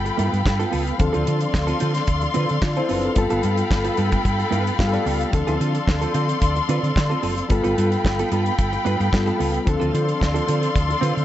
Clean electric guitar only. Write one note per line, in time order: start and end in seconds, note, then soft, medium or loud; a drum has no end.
0.05 muted clean electric guitar stroke soft
0.17 0.40 B3 medium
0.17 0.33 F4 medium
0.17 0.32 B4 medium
0.33 muted clean electric guitar stroke medium
0.45 muted clean electric guitar stroke soft
0.59 0.70 B3 medium
0.59 0.71 F4 medium
0.59 0.71 A4 medium
0.71 0.94 B3 medium
0.71 0.86 F4 medium
0.71 0.85 A4 loud
0.86 muted clean electric guitar stroke soft
0.99 muted clean electric guitar stroke soft
1.13 1.25 C4 medium
1.13 1.26 F4 medium
1.13 1.27 A4 medium
1.26 1.44 C4 medium
1.26 1.41 F4 medium
1.26 1.40 A4 medium
1.41 muted clean electric guitar stroke soft
1.53 muted clean electric guitar stroke soft
1.67 1.79 C4 medium
1.67 1.80 F4 medium
1.67 1.81 A4 medium
1.80 2.02 C4 medium
1.80 1.95 F4 medium
1.80 1.94 A4 medium
1.95 muted clean electric guitar stroke soft
2.08 muted clean electric guitar stroke soft
2.23 muted clean electric guitar stroke soft
2.34 2.56 C4 medium
2.34 2.49 F4 medium
2.34 2.49 B4 medium
2.49 muted clean electric guitar stroke soft
2.63 muted clean electric guitar stroke soft
2.77 2.87 C4 soft
2.77 2.89 F4 medium
2.77 2.89 A4 medium
2.89 3.11 C4 medium
2.89 3.03 F4 medium
2.89 3.02 A4 medium
3.03 muted clean electric guitar stroke soft
3.16 muted clean electric guitar stroke soft
3.30 3.42 B3 medium
3.30 3.43 F4 medium
3.30 3.44 A4 medium
3.43 3.61 B3 medium
3.43 3.58 F4 medium
3.43 3.57 A4 medium
3.58 muted clean electric guitar stroke soft
3.70 muted clean electric guitar stroke soft
3.84 3.96 B3 medium
3.84 3.97 F4 medium
3.84 3.98 A4 medium
3.97 4.19 B3 medium
3.97 4.12 F4 medium
3.97 4.11 A4 medium
4.12 muted clean electric guitar stroke soft
4.24 muted clean electric guitar stroke soft
4.38 muted clean electric guitar stroke soft
4.51 4.73 B3 medium
4.51 4.66 F4 medium
4.51 4.65 B4 loud
4.66 muted clean electric guitar stroke soft
4.93 5.04 B3 soft
4.93 5.05 F4 medium
4.93 5.06 A4 medium
5.06 5.27 B3 medium
5.06 5.20 F4 medium
5.06 5.19 A4 medium
5.20 muted clean electric guitar stroke soft
5.33 muted clean electric guitar stroke soft
5.47 5.59 C4 medium
5.47 5.60 F4 medium
5.47 5.60 A4 medium
5.60 5.77 C4 medium
5.60 5.74 F4 medium
5.60 5.73 A4 medium
5.75 muted clean electric guitar stroke medium
5.87 muted clean electric guitar stroke soft
6.01 6.13 C4 soft
6.01 6.14 F4 medium
6.01 6.14 A4 medium
6.14 6.36 C4 medium
6.14 6.29 F4 medium
6.14 6.27 A4 medium
6.28 muted clean electric guitar stroke soft
6.41 muted clean electric guitar stroke soft
6.56 muted clean electric guitar stroke soft
6.69 6.90 C4 medium
6.69 6.82 F4 medium
6.69 6.82 B4 medium
6.82 muted clean electric guitar stroke medium
6.96 muted clean electric guitar stroke soft
7.10 7.21 C4 medium
7.10 7.22 F4 soft
7.10 7.22 A4 medium
7.22 7.44 C4 medium
7.22 7.36 F4 medium
7.22 7.35 A4 loud
7.37 muted clean electric guitar stroke soft
7.49 muted clean electric guitar stroke soft
7.64 7.76 B3 medium
7.64 7.77 F4 medium
7.64 7.78 A4 medium
7.77 7.94 B3 medium
7.77 7.91 F4 medium
7.77 7.90 A4 medium
7.92 muted clean electric guitar stroke soft
8.04 muted clean electric guitar stroke soft
8.20 8.30 B3 medium
8.20 8.31 F4 medium
8.20 8.32 A4 medium
8.31 8.53 B3 medium
8.31 8.46 F4 medium
8.31 8.45 A4 medium
8.46 muted clean electric guitar stroke soft
8.59 muted clean electric guitar stroke soft
8.73 muted clean electric guitar stroke soft
8.85 9.07 B3 medium
8.85 8.99 F4 medium
8.85 8.99 B4 loud
8.99 muted clean electric guitar stroke medium
9.13 muted clean electric guitar stroke soft
9.26 9.38 B3 medium
9.26 9.39 F4 medium
9.26 9.39 A4 medium
9.39 9.61 B3 medium
9.39 9.53 F4 medium
9.39 9.52 A4 medium
9.53 muted clean electric guitar stroke soft
9.66 muted clean electric guitar stroke soft
9.80 9.92 C4 medium
9.80 9.92 F4 medium
9.80 9.94 A4 medium
9.93 10.11 C4 medium
9.93 10.07 F4 medium
9.93 10.07 A4 medium
10.08 muted clean electric guitar stroke soft
10.20 muted clean electric guitar stroke soft
10.34 10.46 C4 medium
10.34 10.47 F4 medium
10.34 10.47 A4 medium
10.47 10.69 C4 medium
10.47 10.62 F4 medium
10.47 10.61 A4 medium
10.62 muted clean electric guitar stroke medium
10.74 muted clean electric guitar stroke soft
10.89 muted clean electric guitar stroke soft
11.01 11.23 C4 medium
11.01 11.16 F4 medium
11.01 11.15 B4 medium
11.16 muted clean electric guitar stroke soft